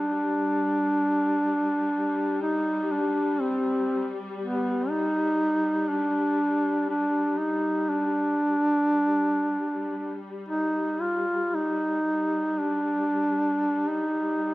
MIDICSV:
0, 0, Header, 1, 3, 480
1, 0, Start_track
1, 0, Tempo, 1001669
1, 1872, Time_signature, 4, 2, 24, 8
1, 4272, Tempo, 1048951
1, 6847, End_track
2, 0, Start_track
2, 0, Title_t, "Duduk"
2, 0, Program_c, 0, 69
2, 0, Note_on_c, 0, 62, 90
2, 1159, Note_off_c, 0, 62, 0
2, 1162, Note_on_c, 0, 63, 83
2, 1399, Note_on_c, 0, 62, 81
2, 1407, Note_off_c, 0, 63, 0
2, 1632, Note_on_c, 0, 60, 86
2, 1639, Note_off_c, 0, 62, 0
2, 1988, Note_off_c, 0, 60, 0
2, 2108, Note_on_c, 0, 59, 77
2, 2346, Note_on_c, 0, 63, 94
2, 2353, Note_off_c, 0, 59, 0
2, 2822, Note_on_c, 0, 62, 82
2, 2829, Note_off_c, 0, 63, 0
2, 3301, Note_off_c, 0, 62, 0
2, 3304, Note_on_c, 0, 62, 83
2, 3542, Note_on_c, 0, 63, 79
2, 3550, Note_off_c, 0, 62, 0
2, 3783, Note_on_c, 0, 62, 101
2, 3790, Note_off_c, 0, 63, 0
2, 4861, Note_off_c, 0, 62, 0
2, 4992, Note_on_c, 0, 63, 84
2, 5230, Note_on_c, 0, 65, 78
2, 5237, Note_off_c, 0, 63, 0
2, 5476, Note_on_c, 0, 63, 88
2, 5482, Note_off_c, 0, 65, 0
2, 5954, Note_on_c, 0, 62, 85
2, 5961, Note_off_c, 0, 63, 0
2, 6551, Note_on_c, 0, 63, 88
2, 6558, Note_off_c, 0, 62, 0
2, 6847, Note_off_c, 0, 63, 0
2, 6847, End_track
3, 0, Start_track
3, 0, Title_t, "String section"
3, 0, Program_c, 1, 48
3, 0, Note_on_c, 1, 55, 40
3, 5720, Note_off_c, 1, 55, 0
3, 5725, Note_on_c, 1, 55, 41
3, 6847, Note_off_c, 1, 55, 0
3, 6847, End_track
0, 0, End_of_file